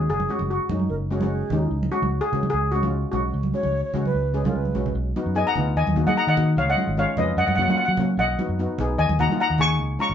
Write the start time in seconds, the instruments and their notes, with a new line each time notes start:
Already playing: steel pan G#3 C#4 F#4
0.09 fingered electric bass F#1, steel pan G#4
0.20 high conga
0.29 steel pan G#3 C#4 F#4
0.39 fingered electric bass F#1, high conga
0.50 steel pan F#4
0.69 fingered electric bass F#2, steel pan G#3 C#4 D#4, low conga
0.79 high conga
0.89 fingered electric bass F#1, flute A#4
1.11 steel pan G#3 C#4 F#4, flute G#4
1.21 steel pan G#3 C#4 F#4, high conga
1.32 flute G#4
1.50 fingered electric bass D#2, steel pan G#3 C#4 D#4, low conga
1.71 fingered electric bass C#2
1.83 high conga
1.92 steel pan G#3 C#4 F#4
2.02 fingered electric bass C#2, high conga
2.21 steel pan G#4
2.32 fingered electric bass C#3, steel pan G#3 C#4 F#4, low conga
2.43 high conga
2.50 fingered electric bass C#2, steel pan G#4
2.72 steel pan G#3 C#4 F#4
2.83 steel pan G#3 C#4 F4, high conga
3.12 fingered electric bass B1, steel pan G#3 C#4 F#4, low conga
3.34 fingered electric bass C#2
3.43 high conga
3.53 steel pan G#3 C#4 F#4, flute C#5
3.63 fingered electric bass C#2, high conga
3.85 flute C#5
3.94 fingered electric bass C#3, steel pan G#3 C#4 F#4, low conga
4.05 flute B4, high conga
4.14 fingered electric bass C#2
4.34 steel pan G#3 C#4 G#4
4.44 steel pan G#3 C#4 F4, flute B4, high conga, low conga
4.55 fingered electric bass C#2
4.65 high conga
4.75 fingered electric bass B1, steel pan G#3 C#4 F#4, low conga
4.86 low conga
4.95 fingered electric bass B1
5.16 steel pan B3 D#4 F#4, high conga
5.26 fingered electric bass F#2
5.35 steel pan B3 D#4 G#4 D#5 G#5
5.47 steel pan F#5 A#5
5.55 fingered electric bass D2, steel pan B3 D#4 F4, low conga
5.76 fingered electric bass D#2, steel pan D#5 G#5
5.87 fingered electric bass D#2, high conga
5.96 steel pan A#3 D#4 F#4, low conga
6.06 steel pan A#3 D#4 G#4 D#5 F#5, high conga
6.17 steel pan F#5 A#5
6.27 fingered electric bass D#3, steel pan D#5 F#5
6.36 steel pan A#3 D#4 F#4, low conga
6.57 fingered electric bass C#2, steel pan C#5 F5
6.70 steel pan D#5 F#5
6.77 steel pan G#3 C#4 F4, high conga
6.87 fingered electric bass G#1
6.97 steel pan G#3 C#4 F4 C#5 F5
7.17 fingered electric bass F2, steel pan G#3 C#4 F4 B4 D#5, low conga
7.37 fingered electric bass F#2, steel pan D#5 F#5
7.47 fingered electric bass F#2, steel pan F#5, high conga
7.55 steel pan A#3 C#4 F#4 F#5, low conga
7.62 steel pan F#5
7.68 steel pan A#3 C#4 F4 F#5, high conga
7.77 steel pan F#5
7.85 fingered electric bass F#3, steel pan F#5
7.97 steel pan A#3 C#4 F#4, low conga
8.17 fingered electric bass B1, steel pan D#5 F#5
8.39 steel pan B3 D#4 F#4, high conga
8.49 fingered electric bass F#2
8.59 steel pan B3 D#4 F#4
8.78 fingered electric bass B1, steel pan B3 D#4 G#4, low conga
8.98 fingered electric bass D#2, steel pan D#5 G#5
9.09 fingered electric bass D#2, high conga
9.19 steel pan A#3 D#4 F#4 F#5 A#5, low conga
9.29 steel pan A#3 D#4 F4, high conga
9.40 steel pan F#5 A#5
9.50 fingered electric bass D#2
9.58 steel pan A#3 D#4 G#4 G#5 C#6, low conga
9.79 fingered electric bass C#2
9.99 steel pan G#3 C#4 F4 A#5 C#6
10.09 fingered electric bass G#1